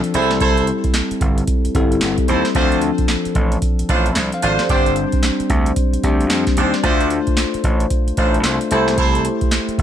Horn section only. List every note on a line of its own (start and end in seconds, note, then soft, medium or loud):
0.14 0.31 E4 medium
0.14 0.31 A4 medium
0.14 0.32 C5 medium
0.40 0.66 E4 medium
0.40 0.66 A4 medium
0.40 0.66 C5 loud
2.28 2.46 E4 medium
2.28 2.46 A4 medium
2.28 2.46 C5 medium
2.55 2.80 D4 medium
2.55 2.80 F4 medium
2.55 2.80 C5 loud
3.89 4.06 D4 medium
3.89 4.07 F4 medium
3.89 4.07 C5 medium
4.43 4.60 D4 medium
4.43 4.60 F4 medium
4.43 4.60 C5 medium
4.69 4.95 D4 medium
4.69 4.95 G4 medium
4.69 4.95 C5 loud
6.57 6.74 D4 medium
6.57 6.74 G4 medium
6.57 6.75 C5 medium
6.83 7.09 D4 loud
6.83 7.09 F4 medium
6.83 7.09 C5 loud
8.17 8.35 D4 medium
8.17 8.35 F4 medium
8.17 8.35 C5 medium
8.71 8.88 E4 medium
8.71 8.89 A4 medium
8.71 8.89 C5 medium
8.97 9.23 E4 medium
8.97 9.23 A4 medium
8.97 9.23 C5 loud